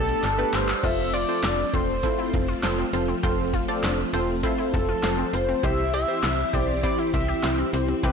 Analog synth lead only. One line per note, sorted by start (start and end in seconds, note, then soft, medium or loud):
0.00 0.55 A4 medium
0.53 0.85 C5 loud
0.83 1.13 E5 loud
1.13 1.75 D5 loud
1.74 2.34 C5 loud
4.73 5.35 A4 loud
5.34 5.65 C5 loud
5.64 5.93 E5 loud
5.94 6.55 E5 loud
6.54 6.83 D5 loud
6.84 6.97 D5 loud
7.14 7.69 E5 loud